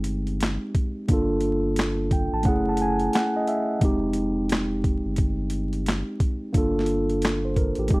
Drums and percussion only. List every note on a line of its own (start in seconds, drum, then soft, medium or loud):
0.04 closed hi-hat medium
0.27 closed hi-hat soft
0.41 snare loud
0.41 clap medium
0.41 closed hi-hat medium
0.75 kick medium
0.75 closed hi-hat medium
1.08 kick loud
1.08 closed hi-hat medium
1.40 closed hi-hat medium
1.76 snare medium
1.76 clap medium
1.76 closed hi-hat medium
2.11 kick medium
2.11 closed hi-hat medium
2.43 kick medium
2.43 closed hi-hat medium
2.77 closed hi-hat medium
2.99 closed hi-hat soft
3.13 snare loud
3.13 clap medium
3.13 closed hi-hat medium
3.47 closed hi-hat medium
3.81 kick loud
3.81 closed hi-hat medium
4.13 closed hi-hat medium
4.49 snare loud
4.49 clap medium
4.49 closed hi-hat medium
4.84 kick medium
4.84 closed hi-hat medium
5.16 kick medium
5.16 closed hi-hat medium
5.50 closed hi-hat medium
5.73 closed hi-hat soft
5.86 snare loud
5.86 clap medium
5.86 closed hi-hat medium
6.20 kick medium
6.20 closed hi-hat medium
6.54 kick medium
6.54 closed hi-hat medium
6.79 snare soft
6.86 closed hi-hat medium
7.10 closed hi-hat soft
7.22 snare loud
7.22 clap medium
7.22 closed hi-hat medium
7.56 kick medium
7.56 closed hi-hat soft
7.75 closed hi-hat soft
7.88 kick loud
7.88 closed hi-hat medium